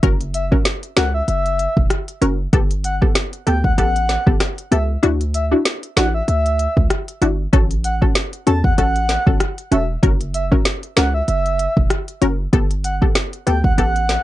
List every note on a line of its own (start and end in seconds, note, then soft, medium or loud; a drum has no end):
0.03 0.54 F#1 loud
0.03 0.24 C#4 medium
0.03 0.24 F#4 medium
0.03 0.24 A#4 loud
0.03 kick loud
0.03 closed hi-hat medium
0.21 closed hi-hat medium
0.34 0.45 E5 medium
0.34 closed hi-hat medium
0.52 0.93 C#4 medium
0.52 0.94 F#4 medium
0.52 0.94 A#4 medium
0.52 kick loud
0.65 snare loud
0.65 closed hi-hat medium
0.83 closed hi-hat medium
0.96 1.22 C#2 medium
0.96 1.26 C#4 medium
0.96 1.26 F#4 medium
0.96 1.26 A#4 medium
0.96 1.08 F#5 medium
0.96 snare loud
0.96 closed hi-hat medium
1.14 1.23 E5 medium
1.28 1.68 F#1 loud
1.28 1.74 E5 loud
1.28 closed hi-hat medium
1.46 closed hi-hat soft
1.59 closed hi-hat medium
1.77 1.88 E1 medium
1.77 kick loud
1.90 cross-stick loud
1.90 closed hi-hat medium
2.08 closed hi-hat medium
2.21 2.47 F#1 loud
2.21 2.42 C#4 medium
2.21 2.42 F#4 medium
2.21 2.43 A#4 medium
2.21 closed hi-hat medium
2.53 3.04 G1 loud
2.53 2.74 B3 loud
2.53 2.74 G4 medium
2.53 2.74 A4 loud
2.53 kick loud
2.53 closed hi-hat medium
2.71 closed hi-hat medium
2.84 2.95 F#5 medium
2.84 closed hi-hat medium
3.02 3.43 B3 medium
3.02 3.44 G4 medium
3.02 3.44 A4 medium
3.02 kick loud
3.15 cross-stick medium
3.15 snare loud
3.15 closed hi-hat medium
3.33 closed hi-hat medium
3.47 3.72 D2 loud
3.47 3.76 B3 medium
3.47 3.76 G4 medium
3.47 3.76 A4 medium
3.47 3.58 G5 medium
3.47 closed hi-hat medium
3.64 3.73 F#5 medium
3.64 kick loud
3.78 4.18 A1 loud
3.78 4.23 B3 loud
3.78 4.23 G4 medium
3.78 4.23 A4 loud
3.78 4.24 F#5 loud
3.78 closed hi-hat medium
3.96 closed hi-hat medium
4.09 snare medium
4.09 closed hi-hat medium
4.26 4.38 G1 medium
4.26 4.44 B3 medium
4.26 4.44 G4 medium
4.26 4.45 A4 medium
4.26 kick medium
4.40 cross-stick loud
4.40 snare medium
4.40 closed hi-hat medium
4.58 closed hi-hat medium
4.71 4.97 C#2 loud
4.71 4.92 B3 medium
4.71 4.92 G4 medium
4.71 4.93 A4 medium
4.71 4.83 E5 medium
4.71 closed hi-hat medium
5.03 5.54 D2 loud
5.03 5.23 D4 loud
5.03 5.24 E4 medium
5.03 5.24 F#4 loud
5.03 closed hi-hat medium
5.21 closed hi-hat medium
5.34 5.45 E5 medium
5.34 closed hi-hat medium
5.51 5.93 D4 medium
5.51 5.93 E4 medium
5.51 5.94 F#4 medium
5.65 snare loud
5.65 closed hi-hat medium
5.83 closed hi-hat medium
5.96 6.22 A1 loud
5.96 6.26 D4 medium
5.96 6.26 E4 medium
5.96 6.26 F#4 medium
5.96 6.08 F#5 medium
5.96 snare loud
5.96 closed hi-hat medium
6.14 6.23 E5 medium
6.28 6.68 D2 loud
6.28 6.74 E5 loud
6.28 closed hi-hat medium
6.46 closed hi-hat medium
6.59 closed hi-hat medium
6.77 6.88 C#2 loud
6.77 kick loud
6.90 cross-stick loud
6.90 closed hi-hat medium
7.08 closed hi-hat medium
7.22 7.47 G1 medium
7.22 7.42 D4 medium
7.22 7.42 E4 medium
7.22 7.43 F#4 medium
7.22 closed hi-hat medium
7.53 8.04 A1 loud
7.53 7.73 C#4 loud
7.53 7.74 F#4 medium
7.53 7.74 A4 loud
7.53 kick loud
7.53 closed hi-hat medium
7.71 closed hi-hat medium
7.84 7.95 F#5 medium
7.84 closed hi-hat medium
8.02 8.43 C#4 medium
8.02 8.43 F#4 medium
8.02 8.44 A4 medium
8.02 kick loud
8.15 snare loud
8.15 closed hi-hat medium
8.33 closed hi-hat medium
8.47 8.72 E2 loud
8.47 8.76 C#4 medium
8.47 8.76 F#4 medium
8.47 8.76 A4 medium
8.47 8.58 A5 medium
8.47 closed hi-hat medium
8.64 8.73 F#5 medium
8.64 kick loud
8.78 9.18 A1 loud
8.78 9.22 C#4 medium
8.78 9.23 F#4 medium
8.78 9.23 A4 loud
8.78 9.24 F#5 loud
8.78 closed hi-hat medium
8.96 closed hi-hat medium
9.09 snare medium
9.09 closed hi-hat medium
9.26 9.38 G1 medium
9.26 9.44 C#4 medium
9.26 9.44 F#4 medium
9.26 9.45 A4 medium
9.26 kick loud
9.40 cross-stick loud
9.40 closed hi-hat medium
9.58 closed hi-hat medium
9.71 9.97 E1 loud
9.71 9.92 C#4 medium
9.71 9.92 F#4 medium
9.71 9.93 A4 medium
9.71 9.82 E5 medium
9.71 closed hi-hat medium
10.03 10.54 F#1 loud
10.03 10.23 C#4 loud
10.03 10.24 F#4 medium
10.03 10.24 A#4 loud
10.03 kick loud
10.03 closed hi-hat medium
10.21 closed hi-hat medium
10.34 10.45 E5 medium
10.34 closed hi-hat medium
10.52 10.93 C#4 medium
10.52 10.94 F#4 medium
10.52 10.94 A#4 medium
10.52 kick loud
10.65 snare loud
10.65 closed hi-hat medium
10.83 closed hi-hat medium
10.97 11.22 C#2 medium
10.97 11.26 C#4 medium
10.97 11.26 F#4 medium
10.97 11.26 A#4 medium
10.97 11.07 F#5 medium
10.97 snare loud
10.97 closed hi-hat medium
11.14 11.23 E5 medium
11.28 11.68 F#1 loud
11.28 11.74 E5 loud
11.28 closed hi-hat medium
11.46 closed hi-hat soft
11.59 closed hi-hat medium
11.77 11.88 E1 loud
11.77 kick loud
11.90 cross-stick loud
11.90 closed hi-hat medium
12.08 closed hi-hat medium
12.22 12.47 F#1 loud
12.22 12.42 C#4 medium
12.22 12.42 F#4 medium
12.22 12.43 A#4 medium
12.22 closed hi-hat medium
12.53 13.04 G1 loud
12.53 12.74 B3 loud
12.53 12.74 G4 medium
12.53 12.74 A4 loud
12.53 kick loud
12.53 closed hi-hat medium
12.71 closed hi-hat medium
12.84 12.95 F#5 medium
12.84 closed hi-hat medium
13.02 13.43 B3 medium
13.02 13.44 G4 medium
13.02 13.44 A4 medium
13.02 kick loud
13.15 cross-stick medium
13.15 snare loud
13.15 closed hi-hat medium
13.33 closed hi-hat medium
13.47 13.72 D2 medium
13.47 13.76 B3 medium
13.47 13.76 G4 medium
13.47 13.76 A4 medium
13.47 13.58 G5 medium
13.47 closed hi-hat medium
13.64 13.73 F#5 medium
13.64 kick loud
13.78 14.18 A1 loud
13.78 14.22 B3 medium
13.78 14.23 G4 medium
13.78 14.23 A4 loud
13.78 14.23 F#5 loud
13.78 closed hi-hat medium
13.96 closed hi-hat soft
14.09 snare medium
14.09 closed hi-hat medium